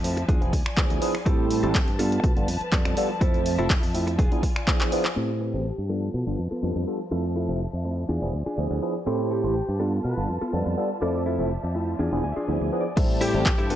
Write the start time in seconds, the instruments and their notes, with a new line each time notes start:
Already playing: fingered electric bass F2, string section F3 E5 A5
0.04 tine electric piano F3 A3 C4 E4 A4, open hi-hat
0.17 muted clean electric guitar stroke, closed hi-hat
0.28 fingered electric bass E2, clean electric guitar D4 F4 G#4, string section D5 G#5, kick, closed hi-hat
0.41 fingered electric bass E1, tine electric piano F3 B3 D4 E4 G#4, closed hi-hat
0.53 fingered electric bass D2, muted clean electric guitar stroke, kick, open hi-hat
0.66 finger snap, muted fingered electric bass stroke
0.77 fingered electric bass D2, tine electric piano F3 B3 D4 E4 G#4, kick, clap, closed hi-hat
0.90 fingered electric bass D2, muted clean electric guitar stroke, closed hi-hat
1.01 tine electric piano F3 B3 D4 E4 G#4, open hi-hat
1.15 finger snap, muted clean electric guitar stroke
1.26 fingered electric bass A2, tine electric piano G3 A3 C4 E4 A4, clean electric guitar C4 G4 A4, string section G4 C5 A5, kick, closed hi-hat
1.51 open hi-hat
1.63 fingered electric bass A1, tine electric piano G3 A3 C4 E4 A4, clean electric guitar C4 G4 A4, closed hi-hat
1.75 kick, clap, closed hi-hat
1.88 fingered electric bass G2, closed hi-hat
1.99 string section F3 B4, tine electric piano G3 B3 D4 F4 A4, clean electric guitar B3 F4 A4, open hi-hat
2.12 closed hi-hat
2.24 fingered electric bass B2, kick, closed hi-hat
2.36 fingered electric bass G1, tine electric piano G3 B3 D4 F4 A4, closed hi-hat
2.48 fingered electric bass F2, muted clean electric guitar stroke, open hi-hat
2.61 muted fingered electric bass stroke, closed hi-hat
2.72 fingered electric bass F2, tine electric piano G3 B3 D4 F4 A4, kick, clap, closed hi-hat
2.85 fingered electric bass F2, finger snap, muted clean electric guitar stroke, closed hi-hat
2.97 tine electric piano G3 B3 D4 F4 A4, open hi-hat
3.10 muted clean electric guitar stroke
3.21 fingered electric bass F2, tine electric piano F3 A3 C4 A4 E5, clean electric guitar E4 F4 A4, string section E5, kick, closed hi-hat
3.34 closed hi-hat
3.46 open hi-hat
3.58 fingered electric bass F1, tine electric piano F3 A3 C4 E4 A4, clean electric guitar E4 F4 A4, closed hi-hat
3.70 kick, clap, closed hi-hat
3.83 fingered electric bass F2, open hi-hat
3.94 tine electric piano F3 A3 C4 E4 A4, open hi-hat
4.07 muted clean electric guitar stroke, closed hi-hat
4.18 fingered electric bass E1, clean electric guitar D4 F4 G#4, string section F4 D5 G#5, kick, closed hi-hat
4.32 tine electric piano F3 B3 D4 E4 G#4, closed hi-hat
4.43 muted clean electric guitar stroke, kick, open hi-hat
4.56 finger snap, closed hi-hat
4.67 tine electric piano F3 B3 D4 E4 G#4, kick, clap, closed hi-hat
4.80 muted clean electric guitar stroke, clap, closed hi-hat
4.92 tine electric piano F3 B3 D4 E4 G#4, open hi-hat
5.05 muted clean electric guitar stroke, clap
5.16 fingered electric bass A2, tine electric piano A3 C4 E4 G4 C5, clean electric guitar C4 G4 A4, string section C4 G4 A5
5.41 clean electric guitar C4 G4 B4
5.54 fingered electric bass A1, tine electric piano A3 C4 E4 G4 C5
5.78 fingered electric bass G2
5.89 string section F3 B4, tine electric piano G3 B3 D4 F4 A4, clean electric guitar B3 F4 A4
6.14 fingered electric bass B2
6.27 fingered electric bass G1, tine electric piano G3 B3 D4 F4 A4
6.39 fingered electric bass F2
6.51 clean electric guitar B3 F4 A4, muted fingered electric bass stroke
6.62 fingered electric bass F2, tine electric piano G3 B3 D4 F4 A4
6.76 fingered electric bass F2, muted clean electric guitar stroke
6.87 tine electric piano G3 B3 D4 F4 A4
7.11 fingered electric bass F2, tine electric piano F3 A3 C4 A4 E5, clean electric guitar E4 F4 A4, string section E5
7.36 clean electric guitar E4 F4 A4
7.49 fingered electric bass F1, tine electric piano F3 A3 C4 E4 A4
7.73 fingered electric bass F2
7.84 tine electric piano F3 A3 C4 E4 A4, muted clean electric guitar stroke
8.09 fingered electric bass E2, clean electric guitar D4 F4 G#4, string section D5 G#5
8.22 fingered electric bass E1, tine electric piano F3 B3 D4 E4 G#4
8.33 fingered electric bass D2
8.46 clean electric guitar D4 F4 G#4, muted fingered electric bass stroke
8.58 fingered electric bass D2, tine electric piano F3 B3 D4 E4 G#4
8.70 fingered electric bass D2, muted clean electric guitar stroke
8.82 tine electric piano F3 B3 D4 E4 G#4
9.06 fingered electric bass A2, tine electric piano A3 C4 E4 G4 C5, clean electric guitar C4 G4 A4, string section G4 C5 A5
9.31 clean electric guitar C4 G4 A4, horn section G4
9.44 fingered electric bass A1, tine electric piano A3 C4 E4 G4 C5
9.69 fingered electric bass G2
9.79 tine electric piano G3 B3 D4 F4 A4, clean electric guitar B3 F4 A4, string section F4 B4
10.04 fingered electric bass B2, horn section B4
10.17 fingered electric bass G1, tine electric piano G3 B3 D4 F4 A4
10.29 fingered electric bass F2
10.41 clean electric guitar B3 F4 A4, muted fingered electric bass stroke
10.52 fingered electric bass F2, tine electric piano G3 B3 D4 F4 A4
10.66 fingered electric bass F2, muted clean electric guitar stroke
10.77 tine electric piano G3 B3 D4 F4 A4
11.01 fingered electric bass F2, tine electric piano F3 A3 C4 A4 E5, string section F3 E5, clean electric guitar E4 F4 A4, horn section D5
11.15 horn section D5
11.26 clean electric guitar E4 F4 A4
11.39 fingered electric bass F1, tine electric piano F3 A3 C4 E4 A4
11.64 fingered electric bass F2
11.75 tine electric piano F3 A3 C4 E4 A4, muted clean electric guitar stroke
11.99 fingered electric bass E2, clean electric guitar D4 F4 G#4, string section D5 G#5
12.12 fingered electric bass E1, tine electric piano F3 B3 D4 E4 G#4
12.24 fingered electric bass D2, clean electric guitar G#5
12.32 clean electric guitar E5
12.36 clean electric guitar D4 F4 G#4, muted fingered electric bass stroke
12.48 fingered electric bass D2, tine electric piano F3 B3 D4 E4 G#4, clean electric guitar E5
12.61 fingered electric bass D2, muted clean electric guitar stroke
12.72 tine electric piano F3 B3 D4 E4 G#4
12.81 clean electric guitar D5
12.96 fingered electric bass A2, tine electric piano G3 A3 C4 E4 A4, string section G4 C5 A5, kick, closed hi-hat, crash
13.21 clean electric guitar E4 G4 A4 C5, horn section G4, open hi-hat
13.34 fingered electric bass A1, tine electric piano G3 A3 C4 E4 A4, closed hi-hat
13.46 kick, clap, closed hi-hat
13.58 fingered electric bass G2, clean electric guitar E4 G4 A4 C5, closed hi-hat
13.70 tine electric piano G3 B3 D4 F4 A4, string section D4 B4, clean electric guitar F4 G4 A4 B4, open hi-hat